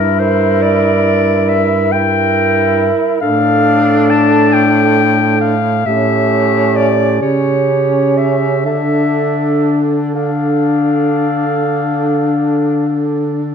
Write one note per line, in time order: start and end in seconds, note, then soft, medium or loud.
0.00 2.90 G2 soft
0.00 1.89 E4 medium
0.00 0.21 A#4 medium
0.00 1.90 A#4 soft
0.20 0.64 C5 medium
0.62 1.50 D5 medium
1.49 1.94 E5 medium
1.92 3.19 E4 medium
1.92 3.19 A#4 soft
1.92 2.94 G5 medium
3.21 5.82 A2 medium
3.21 5.54 D4 medium
3.21 5.54 A4 medium
3.21 4.12 F5 medium
4.10 4.55 A5 medium
4.53 5.40 G5 medium
5.41 5.88 F5 medium
5.86 7.18 A2 soft
5.86 7.18 C#4 medium
5.86 7.17 G4 soft
5.86 6.78 E5 medium
6.76 7.21 D5 medium
7.21 8.66 C#3 soft
7.21 8.63 C#4 soft
7.21 8.62 G4 soft
7.21 8.19 C#5 soft
8.17 8.65 E5 medium
8.64 13.55 D3 soft
8.64 10.12 D4 soft
8.64 10.12 A4 soft
8.64 9.82 E5 medium
10.15 13.55 D4 soft
10.15 13.55 A4 soft
10.15 13.03 F5 soft